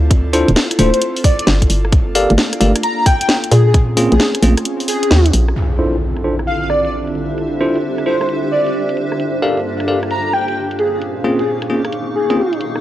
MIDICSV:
0, 0, Header, 1, 8, 480
1, 0, Start_track
1, 0, Key_signature, -1, "minor"
1, 0, Tempo, 454545
1, 112, Time_signature, 4, 2, 24, 8
1, 13523, End_track
2, 0, Start_track
2, 0, Title_t, "Digital synth lead"
2, 0, Program_c, 0, 84
2, 832, Note_on_c, 0, 72, 89
2, 933, Note_off_c, 0, 72, 0
2, 990, Note_on_c, 0, 72, 74
2, 1042, Note_off_c, 0, 72, 0
2, 1314, Note_on_c, 0, 74, 91
2, 1414, Note_off_c, 0, 74, 0
2, 1472, Note_on_c, 0, 74, 78
2, 1523, Note_off_c, 0, 74, 0
2, 2993, Note_on_c, 0, 82, 92
2, 3094, Note_off_c, 0, 82, 0
2, 3150, Note_on_c, 0, 82, 76
2, 3203, Note_off_c, 0, 82, 0
2, 3234, Note_on_c, 0, 79, 90
2, 3334, Note_off_c, 0, 79, 0
2, 3390, Note_on_c, 0, 79, 77
2, 3443, Note_off_c, 0, 79, 0
2, 3714, Note_on_c, 0, 68, 90
2, 3814, Note_off_c, 0, 68, 0
2, 3870, Note_on_c, 0, 68, 78
2, 3923, Note_off_c, 0, 68, 0
2, 4350, Note_on_c, 0, 68, 90
2, 4441, Note_off_c, 0, 68, 0
2, 5153, Note_on_c, 0, 68, 95
2, 5550, Note_off_c, 0, 68, 0
2, 6832, Note_on_c, 0, 77, 88
2, 6933, Note_off_c, 0, 77, 0
2, 6990, Note_on_c, 0, 77, 72
2, 7043, Note_off_c, 0, 77, 0
2, 7072, Note_on_c, 0, 74, 79
2, 7173, Note_off_c, 0, 74, 0
2, 7230, Note_on_c, 0, 74, 72
2, 7282, Note_off_c, 0, 74, 0
2, 8511, Note_on_c, 0, 72, 88
2, 8613, Note_off_c, 0, 72, 0
2, 8670, Note_on_c, 0, 72, 70
2, 8723, Note_off_c, 0, 72, 0
2, 8992, Note_on_c, 0, 74, 88
2, 9093, Note_off_c, 0, 74, 0
2, 9151, Note_on_c, 0, 74, 73
2, 9203, Note_off_c, 0, 74, 0
2, 10673, Note_on_c, 0, 82, 89
2, 10773, Note_off_c, 0, 82, 0
2, 10831, Note_on_c, 0, 82, 73
2, 10883, Note_off_c, 0, 82, 0
2, 10913, Note_on_c, 0, 79, 86
2, 11013, Note_off_c, 0, 79, 0
2, 11071, Note_on_c, 0, 79, 78
2, 11123, Note_off_c, 0, 79, 0
2, 11395, Note_on_c, 0, 68, 85
2, 11494, Note_off_c, 0, 68, 0
2, 11551, Note_on_c, 0, 68, 77
2, 11603, Note_off_c, 0, 68, 0
2, 12029, Note_on_c, 0, 68, 90
2, 12120, Note_off_c, 0, 68, 0
2, 12833, Note_on_c, 0, 68, 92
2, 13230, Note_off_c, 0, 68, 0
2, 13523, End_track
3, 0, Start_track
3, 0, Title_t, "Ambient pad"
3, 0, Program_c, 1, 92
3, 5872, Note_on_c, 1, 62, 74
3, 6252, Note_on_c, 1, 67, 75
3, 6575, Note_on_c, 1, 72, 66
3, 6807, Note_on_c, 1, 76, 65
3, 9712, Note_off_c, 1, 76, 0
3, 10479, Note_on_c, 1, 77, 91
3, 11389, Note_on_c, 1, 58, 68
3, 11392, Note_off_c, 1, 62, 0
3, 11392, Note_off_c, 1, 72, 0
3, 11393, Note_off_c, 1, 67, 0
3, 11528, Note_on_c, 1, 63, 81
3, 11578, Note_on_c, 1, 85, 68
3, 12049, Note_on_c, 1, 68, 79
3, 13523, Note_off_c, 1, 58, 0
3, 13523, Note_off_c, 1, 63, 0
3, 13523, Note_off_c, 1, 68, 0
3, 13523, Note_off_c, 1, 77, 0
3, 13523, Note_off_c, 1, 85, 0
3, 13523, End_track
4, 0, Start_track
4, 0, Title_t, "Tine electric piano"
4, 0, Program_c, 2, 4
4, 352, Note_on_c, 2, 62, 88
4, 352, Note_on_c, 2, 64, 75
4, 352, Note_on_c, 2, 65, 79
4, 352, Note_on_c, 2, 69, 75
4, 352, Note_on_c, 2, 72, 93
4, 523, Note_off_c, 2, 62, 0
4, 523, Note_off_c, 2, 64, 0
4, 523, Note_off_c, 2, 65, 0
4, 523, Note_off_c, 2, 69, 0
4, 523, Note_off_c, 2, 72, 0
4, 833, Note_on_c, 2, 62, 72
4, 833, Note_on_c, 2, 64, 68
4, 833, Note_on_c, 2, 65, 66
4, 833, Note_on_c, 2, 69, 69
4, 833, Note_on_c, 2, 72, 81
4, 947, Note_off_c, 2, 62, 0
4, 947, Note_off_c, 2, 64, 0
4, 947, Note_off_c, 2, 65, 0
4, 947, Note_off_c, 2, 69, 0
4, 947, Note_off_c, 2, 72, 0
4, 2272, Note_on_c, 2, 70, 77
4, 2272, Note_on_c, 2, 77, 95
4, 2273, Note_on_c, 2, 67, 81
4, 2273, Note_on_c, 2, 69, 79
4, 2273, Note_on_c, 2, 74, 79
4, 2443, Note_off_c, 2, 67, 0
4, 2443, Note_off_c, 2, 69, 0
4, 2443, Note_off_c, 2, 70, 0
4, 2443, Note_off_c, 2, 74, 0
4, 2443, Note_off_c, 2, 77, 0
4, 2752, Note_on_c, 2, 67, 74
4, 2752, Note_on_c, 2, 70, 69
4, 2752, Note_on_c, 2, 77, 77
4, 2753, Note_on_c, 2, 69, 67
4, 2753, Note_on_c, 2, 74, 69
4, 2867, Note_off_c, 2, 67, 0
4, 2867, Note_off_c, 2, 69, 0
4, 2867, Note_off_c, 2, 70, 0
4, 2867, Note_off_c, 2, 74, 0
4, 2867, Note_off_c, 2, 77, 0
4, 4193, Note_on_c, 2, 58, 85
4, 4193, Note_on_c, 2, 60, 82
4, 4193, Note_on_c, 2, 61, 79
4, 4193, Note_on_c, 2, 65, 82
4, 4193, Note_on_c, 2, 68, 92
4, 4363, Note_off_c, 2, 58, 0
4, 4363, Note_off_c, 2, 60, 0
4, 4363, Note_off_c, 2, 61, 0
4, 4363, Note_off_c, 2, 65, 0
4, 4364, Note_off_c, 2, 68, 0
4, 4672, Note_on_c, 2, 58, 71
4, 4672, Note_on_c, 2, 60, 68
4, 4672, Note_on_c, 2, 61, 67
4, 4672, Note_on_c, 2, 65, 66
4, 4672, Note_on_c, 2, 68, 80
4, 4787, Note_off_c, 2, 58, 0
4, 4787, Note_off_c, 2, 60, 0
4, 4787, Note_off_c, 2, 61, 0
4, 4787, Note_off_c, 2, 65, 0
4, 4787, Note_off_c, 2, 68, 0
4, 6112, Note_on_c, 2, 62, 76
4, 6112, Note_on_c, 2, 64, 73
4, 6112, Note_on_c, 2, 65, 69
4, 6112, Note_on_c, 2, 69, 68
4, 6112, Note_on_c, 2, 72, 80
4, 6283, Note_off_c, 2, 62, 0
4, 6283, Note_off_c, 2, 64, 0
4, 6283, Note_off_c, 2, 65, 0
4, 6283, Note_off_c, 2, 69, 0
4, 6283, Note_off_c, 2, 72, 0
4, 6593, Note_on_c, 2, 62, 69
4, 6593, Note_on_c, 2, 64, 58
4, 6593, Note_on_c, 2, 65, 57
4, 6593, Note_on_c, 2, 69, 63
4, 6593, Note_on_c, 2, 72, 76
4, 6707, Note_off_c, 2, 62, 0
4, 6707, Note_off_c, 2, 64, 0
4, 6707, Note_off_c, 2, 65, 0
4, 6707, Note_off_c, 2, 69, 0
4, 6707, Note_off_c, 2, 72, 0
4, 8033, Note_on_c, 2, 62, 76
4, 8033, Note_on_c, 2, 64, 69
4, 8033, Note_on_c, 2, 65, 70
4, 8033, Note_on_c, 2, 69, 73
4, 8033, Note_on_c, 2, 72, 85
4, 8204, Note_off_c, 2, 62, 0
4, 8204, Note_off_c, 2, 64, 0
4, 8204, Note_off_c, 2, 65, 0
4, 8204, Note_off_c, 2, 69, 0
4, 8204, Note_off_c, 2, 72, 0
4, 8513, Note_on_c, 2, 62, 65
4, 8513, Note_on_c, 2, 64, 64
4, 8513, Note_on_c, 2, 65, 61
4, 8513, Note_on_c, 2, 69, 63
4, 8513, Note_on_c, 2, 72, 72
4, 8627, Note_off_c, 2, 62, 0
4, 8627, Note_off_c, 2, 64, 0
4, 8627, Note_off_c, 2, 65, 0
4, 8627, Note_off_c, 2, 69, 0
4, 8627, Note_off_c, 2, 72, 0
4, 9952, Note_on_c, 2, 67, 77
4, 9952, Note_on_c, 2, 69, 72
4, 9952, Note_on_c, 2, 70, 70
4, 9952, Note_on_c, 2, 74, 71
4, 9952, Note_on_c, 2, 77, 85
4, 10123, Note_off_c, 2, 67, 0
4, 10123, Note_off_c, 2, 69, 0
4, 10123, Note_off_c, 2, 70, 0
4, 10123, Note_off_c, 2, 74, 0
4, 10123, Note_off_c, 2, 77, 0
4, 10432, Note_on_c, 2, 67, 68
4, 10432, Note_on_c, 2, 69, 61
4, 10432, Note_on_c, 2, 70, 64
4, 10432, Note_on_c, 2, 74, 61
4, 10432, Note_on_c, 2, 77, 74
4, 10546, Note_off_c, 2, 67, 0
4, 10546, Note_off_c, 2, 69, 0
4, 10546, Note_off_c, 2, 70, 0
4, 10547, Note_off_c, 2, 74, 0
4, 10547, Note_off_c, 2, 77, 0
4, 11872, Note_on_c, 2, 58, 75
4, 11872, Note_on_c, 2, 60, 73
4, 11872, Note_on_c, 2, 61, 70
4, 11872, Note_on_c, 2, 65, 74
4, 11872, Note_on_c, 2, 68, 89
4, 12043, Note_off_c, 2, 58, 0
4, 12043, Note_off_c, 2, 60, 0
4, 12043, Note_off_c, 2, 61, 0
4, 12043, Note_off_c, 2, 65, 0
4, 12043, Note_off_c, 2, 68, 0
4, 12352, Note_on_c, 2, 58, 65
4, 12352, Note_on_c, 2, 60, 66
4, 12352, Note_on_c, 2, 61, 63
4, 12352, Note_on_c, 2, 65, 63
4, 12352, Note_on_c, 2, 68, 80
4, 12466, Note_off_c, 2, 58, 0
4, 12466, Note_off_c, 2, 60, 0
4, 12466, Note_off_c, 2, 65, 0
4, 12466, Note_off_c, 2, 68, 0
4, 12467, Note_off_c, 2, 61, 0
4, 12989, Note_on_c, 2, 58, 90
4, 12989, Note_on_c, 2, 60, 79
4, 12989, Note_on_c, 2, 61, 84
4, 12989, Note_on_c, 2, 65, 76
4, 12989, Note_on_c, 2, 68, 96
4, 13098, Note_off_c, 2, 58, 0
4, 13098, Note_off_c, 2, 60, 0
4, 13098, Note_off_c, 2, 61, 0
4, 13098, Note_off_c, 2, 65, 0
4, 13098, Note_off_c, 2, 68, 0
4, 13523, End_track
5, 0, Start_track
5, 0, Title_t, "Analog synth pad"
5, 0, Program_c, 3, 89
5, 0, Note_on_c, 3, 60, 82
5, 0, Note_on_c, 3, 64, 80
5, 0, Note_on_c, 3, 65, 79
5, 0, Note_on_c, 3, 69, 98
5, 1990, Note_off_c, 3, 60, 0
5, 1994, Note_off_c, 3, 64, 0
5, 2034, Note_on_c, 3, 58, 87
5, 2034, Note_on_c, 3, 62, 81
5, 3670, Note_off_c, 3, 69, 0
5, 3696, Note_off_c, 3, 58, 0
5, 3696, Note_off_c, 3, 62, 0
5, 3714, Note_on_c, 3, 68, 91
5, 3715, Note_on_c, 3, 60, 82
5, 3715, Note_on_c, 3, 61, 76
5, 5830, Note_off_c, 3, 65, 0
5, 5852, Note_off_c, 3, 60, 0
5, 5852, Note_off_c, 3, 61, 0
5, 5852, Note_off_c, 3, 68, 0
5, 5872, Note_on_c, 3, 50, 77
5, 5872, Note_on_c, 3, 60, 79
5, 5872, Note_on_c, 3, 64, 76
5, 5873, Note_on_c, 3, 65, 76
5, 5873, Note_on_c, 3, 69, 87
5, 9674, Note_off_c, 3, 50, 0
5, 9674, Note_off_c, 3, 60, 0
5, 9674, Note_off_c, 3, 64, 0
5, 9674, Note_off_c, 3, 65, 0
5, 9674, Note_off_c, 3, 69, 0
5, 9712, Note_on_c, 3, 43, 86
5, 9712, Note_on_c, 3, 58, 72
5, 9712, Note_on_c, 3, 62, 78
5, 9712, Note_on_c, 3, 69, 90
5, 9713, Note_on_c, 3, 65, 74
5, 11375, Note_off_c, 3, 43, 0
5, 11375, Note_off_c, 3, 58, 0
5, 11375, Note_off_c, 3, 62, 0
5, 11375, Note_off_c, 3, 69, 0
5, 11392, Note_on_c, 3, 46, 77
5, 11392, Note_on_c, 3, 68, 84
5, 11393, Note_on_c, 3, 60, 73
5, 11393, Note_on_c, 3, 61, 69
5, 13514, Note_off_c, 3, 65, 0
5, 13523, Note_off_c, 3, 46, 0
5, 13523, Note_off_c, 3, 60, 0
5, 13523, Note_off_c, 3, 61, 0
5, 13523, Note_off_c, 3, 68, 0
5, 13523, End_track
6, 0, Start_track
6, 0, Title_t, "FM bass"
6, 0, Program_c, 4, 39
6, 0, Note_on_c, 4, 38, 96
6, 479, Note_off_c, 4, 38, 0
6, 509, Note_on_c, 4, 26, 97
6, 582, Note_off_c, 4, 26, 0
6, 832, Note_on_c, 4, 26, 97
6, 970, Note_off_c, 4, 26, 0
6, 1552, Note_on_c, 4, 31, 99
6, 1772, Note_off_c, 4, 31, 0
6, 1793, Note_on_c, 4, 31, 83
6, 2399, Note_off_c, 4, 31, 0
6, 2430, Note_on_c, 4, 31, 98
6, 2502, Note_off_c, 4, 31, 0
6, 2753, Note_on_c, 4, 31, 93
6, 2891, Note_off_c, 4, 31, 0
6, 3712, Note_on_c, 4, 46, 96
6, 4319, Note_off_c, 4, 46, 0
6, 4350, Note_on_c, 4, 34, 94
6, 4422, Note_off_c, 4, 34, 0
6, 4672, Note_on_c, 4, 34, 97
6, 4811, Note_off_c, 4, 34, 0
6, 5392, Note_on_c, 4, 39, 103
6, 5612, Note_off_c, 4, 39, 0
6, 5633, Note_on_c, 4, 34, 91
6, 5852, Note_off_c, 4, 34, 0
6, 13523, End_track
7, 0, Start_track
7, 0, Title_t, "Impact"
7, 0, Program_c, 5, 103
7, 5872, Note_on_c, 5, 60, 71
7, 7792, Note_off_c, 5, 60, 0
7, 13523, End_track
8, 0, Start_track
8, 0, Title_t, "Drums"
8, 112, Note_on_c, 9, 36, 113
8, 113, Note_on_c, 9, 42, 68
8, 217, Note_off_c, 9, 36, 0
8, 219, Note_off_c, 9, 42, 0
8, 353, Note_on_c, 9, 46, 100
8, 458, Note_off_c, 9, 46, 0
8, 511, Note_on_c, 9, 42, 39
8, 593, Note_on_c, 9, 38, 115
8, 617, Note_off_c, 9, 42, 0
8, 699, Note_off_c, 9, 38, 0
8, 751, Note_on_c, 9, 37, 30
8, 751, Note_on_c, 9, 42, 69
8, 833, Note_on_c, 9, 46, 107
8, 833, Note_on_c, 9, 63, 80
8, 856, Note_off_c, 9, 37, 0
8, 856, Note_off_c, 9, 42, 0
8, 938, Note_off_c, 9, 46, 0
8, 938, Note_off_c, 9, 63, 0
8, 990, Note_on_c, 9, 42, 69
8, 1073, Note_off_c, 9, 42, 0
8, 1073, Note_on_c, 9, 42, 68
8, 1178, Note_off_c, 9, 42, 0
8, 1230, Note_on_c, 9, 46, 61
8, 1312, Note_on_c, 9, 36, 104
8, 1313, Note_off_c, 9, 46, 0
8, 1313, Note_on_c, 9, 46, 101
8, 1417, Note_off_c, 9, 36, 0
8, 1418, Note_off_c, 9, 46, 0
8, 1471, Note_on_c, 9, 42, 70
8, 1552, Note_on_c, 9, 38, 115
8, 1576, Note_off_c, 9, 42, 0
8, 1658, Note_off_c, 9, 38, 0
8, 1709, Note_on_c, 9, 36, 57
8, 1710, Note_on_c, 9, 42, 50
8, 1793, Note_on_c, 9, 46, 101
8, 1815, Note_off_c, 9, 36, 0
8, 1816, Note_off_c, 9, 42, 0
8, 1899, Note_off_c, 9, 46, 0
8, 1951, Note_on_c, 9, 37, 45
8, 2032, Note_on_c, 9, 36, 111
8, 2033, Note_on_c, 9, 42, 71
8, 2056, Note_off_c, 9, 37, 0
8, 2137, Note_off_c, 9, 36, 0
8, 2139, Note_off_c, 9, 42, 0
8, 2273, Note_on_c, 9, 46, 107
8, 2379, Note_off_c, 9, 46, 0
8, 2431, Note_on_c, 9, 42, 40
8, 2431, Note_on_c, 9, 63, 64
8, 2513, Note_on_c, 9, 38, 113
8, 2536, Note_off_c, 9, 42, 0
8, 2536, Note_off_c, 9, 63, 0
8, 2619, Note_off_c, 9, 38, 0
8, 2671, Note_on_c, 9, 37, 30
8, 2671, Note_on_c, 9, 42, 73
8, 2753, Note_on_c, 9, 46, 105
8, 2753, Note_on_c, 9, 63, 83
8, 2776, Note_off_c, 9, 37, 0
8, 2776, Note_off_c, 9, 42, 0
8, 2859, Note_off_c, 9, 46, 0
8, 2859, Note_off_c, 9, 63, 0
8, 2910, Note_on_c, 9, 37, 52
8, 2910, Note_on_c, 9, 42, 71
8, 2993, Note_off_c, 9, 42, 0
8, 2993, Note_on_c, 9, 42, 67
8, 3016, Note_off_c, 9, 37, 0
8, 3099, Note_off_c, 9, 42, 0
8, 3232, Note_on_c, 9, 36, 100
8, 3233, Note_on_c, 9, 37, 53
8, 3233, Note_on_c, 9, 46, 109
8, 3337, Note_off_c, 9, 36, 0
8, 3339, Note_off_c, 9, 37, 0
8, 3339, Note_off_c, 9, 46, 0
8, 3390, Note_on_c, 9, 42, 70
8, 3472, Note_on_c, 9, 38, 114
8, 3496, Note_off_c, 9, 42, 0
8, 3577, Note_off_c, 9, 38, 0
8, 3630, Note_on_c, 9, 42, 52
8, 3712, Note_on_c, 9, 46, 109
8, 3735, Note_off_c, 9, 42, 0
8, 3818, Note_off_c, 9, 46, 0
8, 3952, Note_on_c, 9, 36, 112
8, 3953, Note_on_c, 9, 42, 70
8, 4058, Note_off_c, 9, 36, 0
8, 4058, Note_off_c, 9, 42, 0
8, 4193, Note_on_c, 9, 46, 110
8, 4298, Note_off_c, 9, 46, 0
8, 4350, Note_on_c, 9, 42, 38
8, 4350, Note_on_c, 9, 63, 60
8, 4433, Note_on_c, 9, 38, 116
8, 4456, Note_off_c, 9, 42, 0
8, 4456, Note_off_c, 9, 63, 0
8, 4538, Note_off_c, 9, 38, 0
8, 4590, Note_on_c, 9, 37, 31
8, 4590, Note_on_c, 9, 42, 71
8, 4673, Note_on_c, 9, 46, 110
8, 4673, Note_on_c, 9, 63, 77
8, 4696, Note_off_c, 9, 37, 0
8, 4696, Note_off_c, 9, 42, 0
8, 4779, Note_off_c, 9, 46, 0
8, 4779, Note_off_c, 9, 63, 0
8, 4830, Note_on_c, 9, 37, 52
8, 4830, Note_on_c, 9, 42, 72
8, 4913, Note_off_c, 9, 42, 0
8, 4913, Note_on_c, 9, 42, 66
8, 4936, Note_off_c, 9, 37, 0
8, 5018, Note_off_c, 9, 42, 0
8, 5070, Note_on_c, 9, 46, 60
8, 5153, Note_off_c, 9, 46, 0
8, 5153, Note_on_c, 9, 46, 112
8, 5259, Note_off_c, 9, 46, 0
8, 5310, Note_on_c, 9, 42, 69
8, 5393, Note_on_c, 9, 38, 114
8, 5416, Note_off_c, 9, 42, 0
8, 5498, Note_off_c, 9, 38, 0
8, 5550, Note_on_c, 9, 42, 52
8, 5632, Note_on_c, 9, 46, 104
8, 5656, Note_off_c, 9, 42, 0
8, 5738, Note_off_c, 9, 46, 0
8, 5791, Note_on_c, 9, 37, 49
8, 5873, Note_on_c, 9, 42, 57
8, 5896, Note_off_c, 9, 37, 0
8, 5978, Note_off_c, 9, 42, 0
8, 6270, Note_on_c, 9, 42, 33
8, 6376, Note_off_c, 9, 42, 0
8, 6510, Note_on_c, 9, 37, 28
8, 6510, Note_on_c, 9, 42, 61
8, 6616, Note_off_c, 9, 37, 0
8, 6616, Note_off_c, 9, 42, 0
8, 6750, Note_on_c, 9, 37, 52
8, 6750, Note_on_c, 9, 42, 60
8, 6833, Note_off_c, 9, 42, 0
8, 6833, Note_on_c, 9, 42, 57
8, 6856, Note_off_c, 9, 37, 0
8, 6938, Note_off_c, 9, 42, 0
8, 7072, Note_on_c, 9, 37, 52
8, 7178, Note_off_c, 9, 37, 0
8, 7230, Note_on_c, 9, 42, 62
8, 7335, Note_off_c, 9, 42, 0
8, 7470, Note_on_c, 9, 42, 43
8, 7553, Note_off_c, 9, 42, 0
8, 7553, Note_on_c, 9, 42, 31
8, 7658, Note_off_c, 9, 42, 0
8, 7792, Note_on_c, 9, 42, 59
8, 7898, Note_off_c, 9, 42, 0
8, 8190, Note_on_c, 9, 42, 33
8, 8296, Note_off_c, 9, 42, 0
8, 8430, Note_on_c, 9, 37, 31
8, 8430, Note_on_c, 9, 42, 58
8, 8535, Note_off_c, 9, 37, 0
8, 8535, Note_off_c, 9, 42, 0
8, 8669, Note_on_c, 9, 37, 52
8, 8669, Note_on_c, 9, 42, 57
8, 8752, Note_off_c, 9, 42, 0
8, 8752, Note_on_c, 9, 42, 57
8, 8775, Note_off_c, 9, 37, 0
8, 8858, Note_off_c, 9, 42, 0
8, 9150, Note_on_c, 9, 42, 56
8, 9255, Note_off_c, 9, 42, 0
8, 9390, Note_on_c, 9, 42, 42
8, 9472, Note_off_c, 9, 42, 0
8, 9472, Note_on_c, 9, 42, 33
8, 9578, Note_off_c, 9, 42, 0
8, 9630, Note_on_c, 9, 37, 45
8, 9712, Note_on_c, 9, 42, 59
8, 9735, Note_off_c, 9, 37, 0
8, 9818, Note_off_c, 9, 42, 0
8, 10110, Note_on_c, 9, 42, 33
8, 10215, Note_off_c, 9, 42, 0
8, 10350, Note_on_c, 9, 37, 30
8, 10350, Note_on_c, 9, 42, 59
8, 10455, Note_off_c, 9, 37, 0
8, 10455, Note_off_c, 9, 42, 0
8, 10589, Note_on_c, 9, 37, 47
8, 10589, Note_on_c, 9, 42, 58
8, 10672, Note_off_c, 9, 42, 0
8, 10672, Note_on_c, 9, 42, 56
8, 10695, Note_off_c, 9, 37, 0
8, 10777, Note_off_c, 9, 42, 0
8, 10912, Note_on_c, 9, 37, 52
8, 11017, Note_off_c, 9, 37, 0
8, 11069, Note_on_c, 9, 42, 56
8, 11175, Note_off_c, 9, 42, 0
8, 11309, Note_on_c, 9, 42, 46
8, 11392, Note_off_c, 9, 42, 0
8, 11392, Note_on_c, 9, 42, 31
8, 11497, Note_off_c, 9, 42, 0
8, 11631, Note_on_c, 9, 42, 58
8, 11737, Note_off_c, 9, 42, 0
8, 12029, Note_on_c, 9, 42, 34
8, 12135, Note_off_c, 9, 42, 0
8, 12269, Note_on_c, 9, 37, 30
8, 12269, Note_on_c, 9, 42, 62
8, 12375, Note_off_c, 9, 37, 0
8, 12375, Note_off_c, 9, 42, 0
8, 12509, Note_on_c, 9, 37, 48
8, 12509, Note_on_c, 9, 42, 59
8, 12591, Note_off_c, 9, 42, 0
8, 12591, Note_on_c, 9, 42, 59
8, 12614, Note_off_c, 9, 37, 0
8, 12697, Note_off_c, 9, 42, 0
8, 12989, Note_on_c, 9, 42, 59
8, 13094, Note_off_c, 9, 42, 0
8, 13229, Note_on_c, 9, 42, 46
8, 13312, Note_off_c, 9, 42, 0
8, 13312, Note_on_c, 9, 42, 34
8, 13418, Note_off_c, 9, 42, 0
8, 13469, Note_on_c, 9, 37, 45
8, 13523, Note_off_c, 9, 37, 0
8, 13523, End_track
0, 0, End_of_file